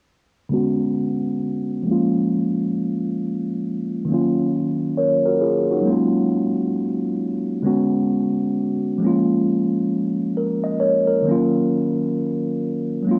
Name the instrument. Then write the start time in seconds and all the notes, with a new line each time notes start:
tine electric piano
0.49 D3 G#3 B3 C#4
0.54 F#4
1.83 F3 G#3 A#3
1.89 C#4 F4
4.05 D#3 F#3
4.09 A#3 C#4
4.14 F4
4.97 A#4 C#5
5.26 F#4 A#4
5.41 F4 G#4
5.71 D#4 F#4
5.81 F#3 G#3
5.86 A#3 C#4
5.90 F4
7.62 D3 G#3 B3 C#4
7.67 F#4
8.98 F3 G#3
9.02 A#3 C#4
9.06 F4
10.37 A#4
10.64 D#5
10.80 A#4 C#5
11.07 A#4
11.23 D#3 F#3
11.27 A#3 C#4
11.31 F4
13.03 F#3 G#3
13.07 A#3 C#4
13.11 F4